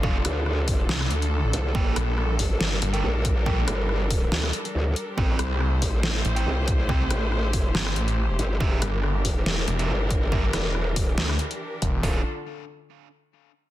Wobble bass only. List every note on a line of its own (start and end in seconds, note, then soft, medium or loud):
0.25 0.88 D2 loud
1.53 1.73 C2 loud
1.75 1.95 G1 medium
2.39 2.80 G1 loud
3.03 3.45 A#1 loud
3.68 4.30 G1 loud
4.32 4.52 D2 loud
4.75 4.95 D2 loud
5.18 5.38 A1 medium
5.82 6.23 A1 loud
6.46 6.88 C2 loud
7.11 7.73 A1 loud
8.39 8.59 G1 loud
8.61 8.80 E1 loud
9.25 9.66 E1 loud
9.89 10.30 G1 loud
10.53 10.97 E1 loud
10.97 11.16 D#1 loud
12.03 12.23 D1 loud